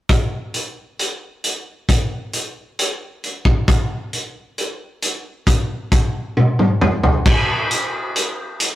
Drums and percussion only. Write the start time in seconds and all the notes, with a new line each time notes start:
0.09 kick, closed hi-hat
0.54 closed hi-hat
0.99 closed hi-hat
1.44 closed hi-hat
1.89 kick, closed hi-hat
2.33 closed hi-hat
2.79 closed hi-hat
3.24 closed hi-hat
3.45 kick
3.68 kick, closed hi-hat
4.13 closed hi-hat
4.58 closed hi-hat
5.02 closed hi-hat
5.47 kick, closed hi-hat
5.92 kick, closed hi-hat
6.37 high tom
6.59 mid tom
6.81 mid tom
7.03 floor tom
7.26 kick, crash
7.71 closed hi-hat
8.16 closed hi-hat
8.60 closed hi-hat